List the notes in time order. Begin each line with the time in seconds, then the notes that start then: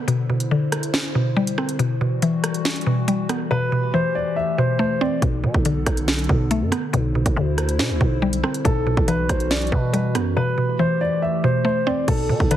Already playing: D3
0.08 B2 E4 C5, closed hi-hat
0.30 B2
0.40 closed hi-hat
0.51 D3
0.72 cross-stick, closed hi-hat
0.83 closed hi-hat
0.94 snare
1.15 B2
1.37 G3
1.47 closed hi-hat
1.58 C4, cross-stick
1.69 closed hi-hat
1.79 B2 E3 G3 F#4, closed hi-hat
2.01 B2
2.22 E3, closed hi-hat
2.44 cross-stick, closed hi-hat
2.54 closed hi-hat
2.65 snare, closed hi-hat
2.71 closed hi-hat
2.76 closed hi-hat
2.81 closed hi-hat
2.87 B2
3.08 G3, closed hi-hat
3.29 B3, cross-stick, closed hi-hat
3.51 B2 E3 A3 G4 B4
3.72 B2
3.94 E3 C5
4.15 D5
4.36 E5
4.58 B2 C5
4.79 A3 C5
5.01 C4 D5
5.22 B1 B2 D3 B3 A4, kick, closed hi-hat
5.44 B2
5.54 B1, kick
5.65 D3, closed hi-hat
5.86 B1, kick, cross-stick, closed hi-hat
5.97 closed hi-hat
6.08 snare, closed hi-hat
6.13 closed hi-hat
6.19 closed hi-hat
6.24 closed hi-hat
6.29 B1 B2, kick
6.51 A3, closed hi-hat
6.61 F#2
6.72 B3, cross-stick, closed hi-hat
6.93 B1 B2 E4 C5, closed hi-hat
7.15 B2
7.26 B1, kick, closed hi-hat
7.36 D2 D3
7.58 cross-stick, closed hi-hat
7.69 closed hi-hat
7.79 B2, snare
7.90 D2
8.01 B1 B2, kick
8.22 G3
8.33 closed hi-hat
8.44 C4, cross-stick
8.54 closed hi-hat
8.65 B1 B2 E3 G3 F#4 A4, kick, closed hi-hat
8.87 B2
8.97 B1, kick
9.08 E3 B4, closed hi-hat
9.29 B1 C5, kick, cross-stick, closed hi-hat
9.40 closed hi-hat
9.51 D5, snare, closed hi-hat
9.56 closed hi-hat
9.62 closed hi-hat
9.67 closed hi-hat
9.72 B2 B4, kick
9.93 G3 B4, closed hi-hat
10.15 F#2 B3, cross-stick, closed hi-hat
10.36 B2 E3 A3 G4 B4
10.58 B2
10.79 E3 C5
11.01 D5
11.22 E5
11.44 B2 C5
11.65 A3 C5
11.87 C4 D5
12.08 B1 B2 D3 B3 A4, kick, closed hi-hat, crash
12.29 B2
12.40 B1, kick
12.51 D3 B4, closed hi-hat